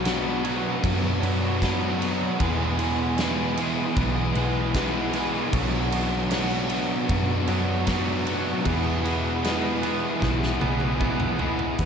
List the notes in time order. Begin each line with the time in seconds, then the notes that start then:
Already playing: B1 B2 F#3 B3 D4 F#4
0.04 B2 F#3 B3 D4 F#4 B4, snare, ride
0.44 B2 F#3 B3 D4 F#4 B4, ride
0.83 F#2 B2 F#3 B3 D4 F#4 B4, kick, ride
1.22 F#2 B2 F#3 B3 D4 F#4 B4, ride
1.60 B2 F#3 B3 D4 F#4 B4, kick, snare, ride
1.99 B2 F#3 B3 D4 F#4 B4, ride
2.38 E2 B2 E3 G#3 B3 E4 G#4 B4, kick, ride
2.77 E3 G#3 B3 E4 G#4 B4, ride
3.18 E3 G#3 B3 E4 G#4 B4, snare, ride
3.56 E3 G#3 B3 E4, ride
3.60 G#3 G#4 B4
3.94 B1 E2 B2 B3, kick, ride
3.99 E3 G#3 B3 E4 G#4 B4
4.33 B1 E3 G#3, ride
4.37 E2 B2 G#3 B3 E4 G#4 B4
4.74 E2 B2 E3 G#3 B3 E4 G#4, kick, snare, ride
4.79 B4
5.13 E3 G#3 B3 E4 G#4 B4, snare, ride
5.17 G#3
5.53 B1 B2 F#3 B3 D4 F#4, kick, ride
5.91 B2 F#3 B3 D4 F#4, ride
6.30 B2 F#3 B3 D4 F#4, snare, ride
6.69 B2 F#3 B3 D4 F#4, ride
7.09 F#2 B2 F#3 B3 D4 F#4, kick, ride
7.47 F#2 B2 F#3 B3 D4 F#4, ride
7.86 B2 F#3 B3 D4 F#4, kick, snare, ride
8.26 B2 F#3 B3 D4 F#4, ride
8.64 E2 B2 E3 G#3 B3 E4 G#4, kick, ride
9.03 E3 B3 E4 G#4, ride
9.07 E3 G#3
9.43 E3 G#3 B3 E4 G#4, snare, ride
9.82 E3 G#3 B3 E4 G#4, ride
10.19 B1 E2 B2 E3 B3 E4 G#4, kick, snare
10.24 G#3 B3
10.43 snare
10.58 E3 B3 E4 G#4, high tom
10.63 B1 E2 B2 E3 G#3
10.80 high tom
10.98 E3 G#3 B3 E4 G#4, kick, mid tom
11.02 E2 B2 E3 G#3 B3 G#4
11.20 mid tom
11.37 E3 G#3 B3 E4 G#4, floor tom
11.42 E3
11.59 floor tom
11.78 E2 B2 E3 G#3 B3 E4 G#4, kick, closed hi-hat